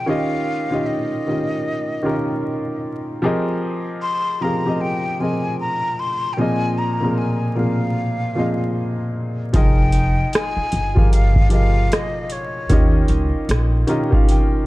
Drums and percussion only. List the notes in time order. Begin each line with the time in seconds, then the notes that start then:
9.54 kick, closed hi-hat
9.92 closed hi-hat
10.33 cross-stick, closed hi-hat
10.72 closed hi-hat
10.97 kick
11.13 closed hi-hat
11.36 kick
11.50 closed hi-hat
11.92 cross-stick, closed hi-hat
12.30 closed hi-hat
12.70 kick, closed hi-hat
13.08 closed hi-hat
13.49 cross-stick, closed hi-hat
13.88 closed hi-hat
14.13 kick
14.29 closed hi-hat